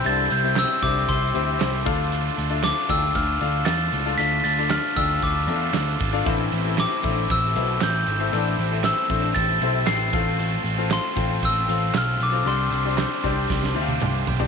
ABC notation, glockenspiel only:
X:1
M:4/4
L:1/8
Q:1/4=116
K:C
V:1 name="Glockenspiel"
a' g' e' d' c'3 z | z2 d' e' f'2 a'2 | b' a' f' e' d'3 z | z2 d'2 e'2 g'2 |
z2 e'2 a'2 c''2 | z2 c'2 e'2 f' d' | c'6 z2 |]